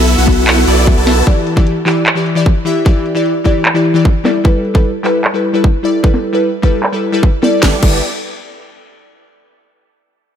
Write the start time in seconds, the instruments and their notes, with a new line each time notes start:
Already playing: synth keys B3 F#4, supersaw synth B3 E4 F#4 A4 E5
0.00 sub bass B1, synth keys A4 E5
0.08 closed hi-hat
0.18 sub bass B1, supersaw synth B3 E4 F#4 A4 F#5
0.27 synth keys B3 F#4 A4 E5, kick, closed hi-hat
0.33 closed hi-hat
0.47 clap, closed hi-hat
0.57 synth keys B3 F#4 A4 E5
0.67 sub bass B1, supersaw synth B3 E4 F#4 A4 D5, closed hi-hat
0.77 closed hi-hat
0.86 synth keys B3 F#4 A4 E5, kick, closed hi-hat
0.97 sub bass B1, supersaw synth B3 E4 F#4 A4 A5
1.06 synth keys B3 F#4 A4 E5, snare, closed hi-hat
1.26 synth keys E3 E4 G4 D5, kick, closed hi-hat
1.47 closed hi-hat
1.56 synth keys E3 E4 G4 D5, kick, closed hi-hat
1.67 closed hi-hat
1.85 synth keys E3 E4 G4 D5, clap, closed hi-hat
1.92 closed hi-hat
2.06 clap, closed hi-hat
2.15 synth keys E3 E4 G4 D5
2.26 closed hi-hat
2.35 synth keys E3 E4 G4 D5, closed hi-hat
2.46 kick, closed hi-hat
2.65 synth keys E3 E4 G4 E5, closed hi-hat
2.85 synth keys E3 E4 G4 D5, kick, closed hi-hat
3.06 closed hi-hat
3.15 synth keys E3 E4 G4 D5, closed hi-hat
3.26 closed hi-hat
3.44 synth keys E3 E4 G4 D5, kick, closed hi-hat
3.51 closed hi-hat
3.65 clap, closed hi-hat
3.74 synth keys E3 E4 G4 D5
3.85 closed hi-hat
3.94 synth keys E3 E4 G4 D5, closed hi-hat
4.05 kick
4.24 synth keys G3 E4 A4 D5, snare, closed hi-hat
4.44 synth keys G3 E4 A4 B4, kick
4.65 closed hi-hat
4.74 synth keys G3 E4 A4 B4, kick
4.85 closed hi-hat
5.03 synth keys G3 E4 A4 B4, clap, closed hi-hat
5.10 closed hi-hat
5.24 clap, closed hi-hat
5.34 synth keys G3 E4 A4 B4
5.44 closed hi-hat
5.53 synth keys G3 E4 A4 B4, closed hi-hat
5.64 kick
5.83 synth keys G3 E4 A4 D5, closed hi-hat
6.03 synth keys G3 E4 A4 B4, kick
6.14 snare
6.24 closed hi-hat
6.33 synth keys G3 E4 A4 B4
6.43 closed hi-hat
6.62 synth keys G3 E4 A4 B4, kick, closed hi-hat
6.68 closed hi-hat
6.83 clap, closed hi-hat
6.92 synth keys G3 E4 A4 B4
7.12 synth keys G3 E4 A4 B4
7.23 kick
7.42 synth keys G3 E4 A4 D5, snare
7.60 sub bass G1, synth keys G3 E4 A4, supersaw synth B3 E4 G4 A4 D5, kick, snare
7.66 synth keys B4
7.80 sub bass G1, synth keys G3 E4, supersaw synth B3 E4 G4 A4 D5, kick, crash
7.84 synth keys A4 B4